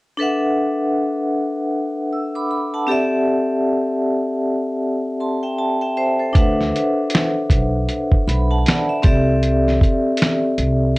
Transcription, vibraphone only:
0.17 1.41 D4 medium
0.17 1.42 A4 medium
0.17 1.42 B4 medium
0.17 1.43 E5 medium
0.23 1.43 F#5 medium
2.13 2.34 E6 medium
2.35 2.50 B5 medium
2.35 2.50 D6 medium
2.51 2.72 B5 medium
2.74 3.10 F#5 soft
2.74 3.10 A5 medium
2.87 4.12 C4 medium
2.87 4.13 G4 medium
2.87 4.13 A4 medium
2.87 4.14 D5 medium
2.92 4.15 E5 medium
5.20 5.42 A5 soft
5.20 5.42 C6 soft
5.43 5.58 E5 medium
5.43 5.57 G5 medium
5.58 5.80 A5 medium
5.81 5.96 E5 medium
5.81 5.96 G5 medium
5.97 6.18 C5 medium
5.97 6.18 E5 medium
6.19 6.33 A4 soft
6.19 6.56 C5 medium
6.33 7.56 D4 medium
6.33 7.57 A4 medium
6.33 7.58 B4 medium
6.33 7.58 E5 medium
6.38 7.59 F#5 medium
8.28 8.49 B5 medium
8.51 8.65 F#5 medium
8.51 8.65 A5 medium
8.66 8.88 D5 medium
8.66 8.88 F#5 medium
8.89 9.06 E5 medium
9.02 10.28 C4 medium
9.02 10.28 G4 medium
9.02 10.29 A4 medium
9.02 10.29 D5 medium
9.07 10.30 E5 medium

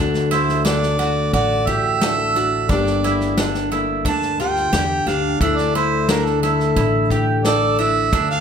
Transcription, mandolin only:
0.00 0.30 D4 medium
0.31 0.64 E4 medium
0.65 0.99 D4 medium
0.99 1.33 F#4 medium
1.34 1.67 F#4 medium
1.67 2.01 G4 medium
2.01 2.35 A4 medium
2.36 2.68 D4 medium
2.69 3.03 D4 medium
3.04 3.37 E4 medium
3.38 3.71 D4 medium
3.72 4.05 E4 medium
4.06 4.39 D4 medium
4.40 4.72 F4 medium
4.73 5.06 G4 medium
5.07 5.40 D4 medium
5.41 5.75 D4 medium
5.75 6.08 E4 medium
6.09 6.42 D4 medium
6.43 6.75 E4 medium
6.77 7.10 E4 medium
7.11 7.45 G4 medium
7.46 7.79 A4 medium
7.79 8.12 D4 medium
8.13 8.40 D4 medium

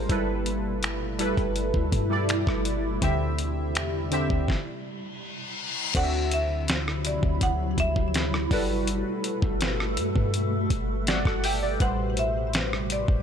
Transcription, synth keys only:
0.00 0.11 G#3 loud
0.00 0.11 F4 medium
0.00 0.11 A#4 medium
0.00 0.12 C5 loud
0.09 1.01 G3 medium
0.09 1.02 E4 medium
0.09 1.02 A4 medium
0.09 1.02 B4 loud
1.19 1.95 G3 loud
1.19 1.96 E4 medium
1.19 1.96 A4 medium
1.19 1.97 B4 loud
2.10 2.87 G3 medium
2.10 2.87 E4 medium
2.10 2.88 A4 medium
2.10 2.88 D5 loud
3.02 3.94 D3 medium
3.02 3.94 C4 medium
3.02 3.94 G4 medium
3.02 3.95 E5 loud
4.11 4.48 D3 loud
4.11 4.49 C4 medium
4.11 4.49 G4 medium
4.11 4.49 E5 loud
5.94 7.17 D3 medium
5.94 7.17 C4 medium
5.94 7.18 F#4 medium
5.94 6.02 D5 medium
6.03 7.21 E5 medium
8.50 9.73 G3 medium
8.50 9.73 F#4 medium
8.50 9.74 A4 medium
8.50 9.74 B4 medium
11.08 11.25 F#4 medium
11.08 11.25 D5 medium
11.08 11.25 F#5 medium
11.26 11.43 A4 medium
11.26 11.43 F#5 medium
11.44 11.62 G4 medium
11.44 11.61 E5 medium
11.44 11.78 G5 medium
11.63 11.97 F#4 medium
11.63 11.97 D5 medium
11.80 13.02 A2 medium
11.80 13.03 G3 medium
11.80 13.03 B4 medium
11.80 13.04 C5 medium

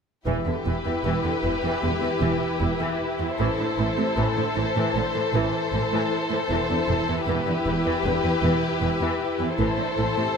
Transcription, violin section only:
0.27 3.35 G4 soft
0.27 3.35 B4 soft
3.39 7.23 A4 soft
3.39 7.23 C5 soft
7.27 9.59 G4 soft
7.27 9.59 B4 soft
9.58 10.37 A4 soft
9.58 10.37 C5 soft

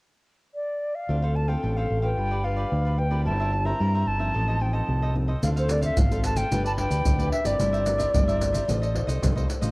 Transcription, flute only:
0.54 0.96 D5 medium
0.94 1.36 F5 medium
1.35 1.49 A5 medium
1.48 1.78 G5 medium
1.76 2.01 F5 medium
2.02 2.45 G5 medium
2.43 2.99 F5 medium
2.98 3.24 G5 medium
3.25 3.66 A5 medium
3.65 4.08 A#5 medium
4.07 4.63 A5 medium
4.61 4.75 G5 medium
4.73 5.15 A5 medium
5.43 5.49 F5 medium
5.58 5.72 C5 medium
5.71 5.83 D5 medium
5.84 5.99 E5 medium
5.98 6.24 F5 medium
6.24 6.38 A5 medium
6.36 6.64 G5 medium
6.66 6.72 A5 medium
6.78 7.29 G5 medium
7.31 7.47 E5 medium
7.46 9.09 D5 medium

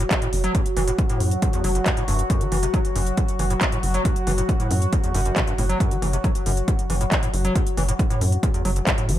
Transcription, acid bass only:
0.00 0.04 A2 medium
0.11 0.17 F#3 medium
0.22 0.28 A2 medium
0.44 0.53 F#3 loud
0.55 0.61 E2 medium
0.77 0.83 E3 medium
0.88 0.91 A2 medium
1.10 1.33 A2 medium
1.32 1.35 F#2 medium
1.43 1.49 E2 medium
1.54 1.62 E2 medium
1.64 1.70 F#3 medium
1.75 1.79 F#1 medium
1.86 1.92 F#2 medium
1.97 2.03 A2 medium
2.08 2.21 G2 medium
2.19 2.23 F#2 medium
2.30 2.43 F#2 medium
2.41 2.47 F#3 medium
2.52 2.58 E3 medium
2.63 2.67 C3 medium
2.74 2.80 F#3 medium
2.96 3.02 F#2 medium
3.40 3.46 E3 medium
3.51 3.54 A2 medium
3.62 3.68 F#3 medium
3.72 3.78 A2 medium
3.94 4.03 F#3 loud
4.05 4.11 E2 medium
4.27 4.33 E3 medium
4.38 4.42 A2 medium
4.60 4.83 A2 medium
4.82 4.85 F#2 medium
4.93 4.99 E2 medium
5.04 5.13 E2 medium
5.15 5.21 F#2 loud
5.26 5.32 F#2 medium
5.36 5.43 B2 loud
5.47 5.54 G2 medium
5.58 5.64 A2 medium
5.69 5.78 F#3 loud
5.80 5.93 F#2 medium
5.91 5.97 F#3 medium
6.02 6.08 E3 medium
6.13 6.17 C3 medium
6.24 6.30 F#3 medium
6.46 6.52 F#2 medium
6.90 6.96 E3 medium
7.01 7.04 A2 medium
7.12 7.18 F#3 medium
7.23 7.29 A2 medium
7.45 7.54 F#3 loud
7.55 7.62 E2 medium
7.77 7.83 E3 medium
7.88 7.92 A2 medium
8.10 8.34 A2 medium
8.32 8.36 F#2 medium
8.43 8.49 E2 medium
8.54 8.63 E2 medium
8.65 8.71 F#3 medium
8.76 8.80 F#1 medium
8.87 8.93 F#2 medium
8.98 9.10 A2 medium
9.09 9.19 F#3 medium

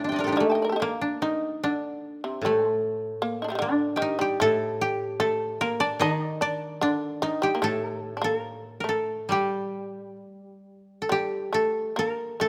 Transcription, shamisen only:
0.00 0.36 C3 soft
0.37 0.76 A3 medium
0.50 0.62 G5 soft
0.50 0.63 A5 soft
0.55 0.64 D#5 soft
0.62 0.72 A#4 soft
0.62 0.69 D5 soft
0.69 0.79 G4 soft
0.69 0.81 A4 soft
0.76 0.92 D4 soft
0.76 0.82 D#4 soft
0.82 1.19 A#3 medium
1.22 1.60 D#3 medium
1.64 2.20 D3 soft
2.24 2.42 C3 soft
2.45 2.67 G3 medium
2.67 3.19 A3 medium
3.22 3.42 A#3 medium
3.42 3.48 D4 soft
3.42 3.50 D#4 soft
3.48 3.66 G3 soft
3.48 3.55 A3 soft
3.48 3.51 A#3 soft
3.55 3.97 D3 medium
3.55 3.58 D#3 soft
3.97 4.18 D#3 medium
4.19 4.39 G3 medium
4.40 5.17 A3 medium
5.20 5.58 A3 medium
5.61 5.80 A#3 medium
5.80 6.00 D4 medium
6.02 6.39 D#4 medium
6.41 6.79 D4 medium
6.81 7.20 D3 medium
7.22 7.41 D#3 medium
7.42 7.54 G3 medium
7.55 7.62 A#3 medium
7.62 8.13 A3 medium
8.17 8.24 D4 soft
8.22 8.82 A#3 medium
8.84 9.26 A3 soft
9.31 10.16 G3 soft
11.09 11.50 G3 medium
11.53 11.93 A3 medium
11.96 12.36 A#3 medium
12.40 12.49 A3 medium

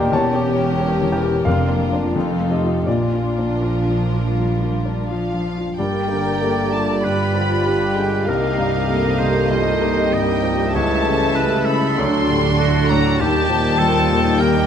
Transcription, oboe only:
5.78 7.05 D5 soft
7.04 7.66 B4 soft
7.67 8.31 B4 soft
8.29 8.87 A#4 soft
8.88 9.20 A#4 soft
9.18 9.49 C5 soft
9.50 10.15 C5 soft
10.14 10.74 D#5 soft
10.74 11.37 C#5 soft
11.35 11.67 B4 medium
11.65 12.33 A4 medium
12.59 13.22 F#4 medium
13.20 13.80 G4 medium
13.78 14.42 A4 medium
14.40 14.66 A#4 medium

